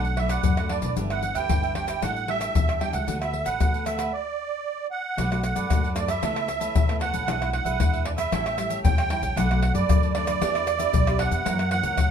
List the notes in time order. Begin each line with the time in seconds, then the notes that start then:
Already playing: B1 B2 F#3 A3 D4 F#5
0.05 muted cavaquinho stroke, pandeiro, shaker
0.17 F#3 A3 D4 A4 B4 D5 E5, pandeiro, tamborim
0.29 A4 B4 D5 F#5, pandeiro, tamborim, shaker
0.43 F#2, pandeiro, shaker, surdo
0.57 F#3 A3 D4 A4 B4 D5, pandeiro, tamborim, shaker
0.69 D4 A4 B4 D5, pandeiro, tamborim
0.82 B2 E3 B3 D4 A4 B4 D5, pandeiro, shaker
0.97 G1 G2 D4 G4 B4 E5, pandeiro, shaker, surdo
1.10 E3 B3 D4 G4 B4 E5 F#5, pandeiro, tamborim, shaker
1.23 muted cavaquinho stroke, pandeiro, shaker
1.34 D2 G4 B4 E5 G5, pandeiro, shaker
1.49 G1 D3 E3 B3 D4, pandeiro, tamborim, shaker, surdo
1.63 G4 B4 E5, pandeiro, shaker
1.75 D4 G4 B4 E5 G5, pandeiro, tamborim
1.87 G4 B4 E5, pandeiro, tamborim, shaker
2.02 A1 A2 G3 D4 E4 A4 E5 F#5 G5, pandeiro, tamborim, shaker, surdo
2.16 muted cavaquinho stroke, pandeiro, shaker
2.27 G3 D4 E4 A4 E5 G5, pandeiro, tamborim
2.39 A4 E5 G5, pandeiro, tamborim, shaker
2.55 E2 E3, pandeiro, shaker, surdo
2.68 A4 E5 G5, pandeiro, tamborim, shaker
2.80 G3 D4 E4 A4 E5 G5, pandeiro, tamborim
2.92 C#2 A4 E5 F#5 G5, pandeiro, shaker
3.07 D2 D3 A3 B3 D4 F#4 A4 B4 F#5, pandeiro, shaker, surdo
3.21 A3 B3 F#4 A4 B4 E5 F#5, pandeiro, tamborim, shaker
3.33 pandeiro
3.45 A1 A4 B4 F#5, pandeiro, shaker
3.60 D2 A2 A3 B3 F#4, pandeiro, tamborim, shaker, surdo
3.73 A4 B4 F#5, pandeiro, shaker
3.85 D4 A4 B4 E5 F#5, pandeiro, tamborim, shaker
3.97 A4 B4 F#5, pandeiro, tamborim, shaker
4.12 D5
4.91 F#5
5.17 B1 B2 A3 D4 F#4 A4 B4 D5, pandeiro, tamborim, shaker, surdo
5.30 A3 D4 F#4 A4 B4 D5, pandeiro, tamborim, shaker
5.43 F#5, muted cavaquinho stroke, pandeiro, tamborim, shaker
5.55 F#2 A4 B4 D5, pandeiro, shaker
5.70 F#2 F#3 A3 D4 F#4, pandeiro, tamborim, shaker, surdo
5.83 A4 B4 D5, pandeiro, shaker
5.95 A3 D4 F#4 A4 B4 D5, pandeiro, tamborim, shaker
6.08 A4 B4 D5 E5, pandeiro, tamborim, shaker
6.22 C#2 C#3 A3 B3 E4 A4 B4 C#5 A5, pandeiro, tamborim, shaker, surdo
6.35 B4 C#5 A5, pandeiro, tamborim, shaker
6.48 muted cavaquinho stroke, pandeiro, tamborim, shaker
6.59 A3 B3 E4 B4 C#5 A5, pandeiro, shaker
6.75 E2 C#3, pandeiro, shaker, surdo
6.87 A3 B3 E4 B4 C#5 A5, pandeiro, tamborim, shaker
6.99 A4 B4 C#5 F#5 A5, pandeiro, tamborim
7.12 A#1 B4 C#5 A5, pandeiro, shaker
7.26 B1 B2 G#3 D4 E4 G#4 B4 E5, pandeiro, tamborim, shaker, surdo
7.40 G#3 D4 E4 G#4 B4 E5, pandeiro, tamborim, shaker
7.52 F#5, muted cavaquinho stroke, pandeiro, tamborim
7.65 B1 G#4 B4 E5, pandeiro, shaker
7.80 E2 B2 G#3 D4 E4, pandeiro, tamborim, shaker, surdo
7.92 G#4 B4 E5, pandeiro, shaker
8.05 D4 G#4 B4 D5 E5, pandeiro, tamborim
8.17 G#4 B4 E5, pandeiro, tamborim, shaker
8.31 A1 A2 G3 C#4 E4 A4 C#5 G5, pandeiro, tamborim, shaker, surdo
8.45 A4 C#5 G5, pandeiro, tamborim, shaker
8.57 G3 C#4 E4, muted cavaquinho stroke, pandeiro, tamborim, shaker
8.69 A4 C#5 G5, pandeiro, shaker
8.84 E2 E3 G5, pandeiro, shaker, surdo
8.97 A4 C#5 G5, pandeiro, tamborim, shaker
9.09 G3 C#4 E4 A4 C#5 G5, pandeiro, tamborim
9.21 A#1 A4 C#5 G5, pandeiro, shaker
9.36 B1 B2 F#3 A3 D4 A4 B4 D5 F#5, pandeiro, tamborim, shaker, surdo
9.49 F#3 A3 D4 A4 B4 D5, pandeiro, tamborim, shaker
9.62 muted cavaquinho stroke, pandeiro, tamborim
9.74 F#2 A4 B4 D5, pandeiro, shaker
9.89 D2 F#2 F#3 A3 D4, pandeiro, tamborim, shaker, surdo
10.02 A4 B4 D5, pandeiro, shaker
10.14 F#3 A3 D4 A4 B4 D5, pandeiro, tamborim
10.27 A4 B4 D5, pandeiro, tamborim, shaker
10.40 E2 E3 B3 D4 G4 B4 E5, pandeiro, tamborim, shaker, surdo
10.54 G4 B4 E5, pandeiro, tamborim, shaker
10.66 muted cavaquinho stroke, pandeiro, tamborim, shaker
10.78 B3 D4 G4 B4 E5, pandeiro, shaker
10.93 B1 B2, pandeiro, shaker, surdo
11.06 B3 D4 G4 B4 E5, pandeiro, tamborim, shaker
11.18 D4 G4 B4 E5 F#5, pandeiro, tamborim
11.31 E2 G4 B4 E5, pandeiro, shaker
11.45 F#2 E3 A#3 C#4 E4 A#4 C#5 F#5, pandeiro, tamborim, shaker, surdo
11.58 A#4 C#5 F#5, pandeiro, tamborim, shaker
11.70 E3 A#3 C#4 F#5, muted cavaquinho stroke, pandeiro, tamborim
11.83 C#2 A#4 C#5 F#5, pandeiro, shaker
11.97 C#2 C#3, pandeiro, tamborim, shaker, surdo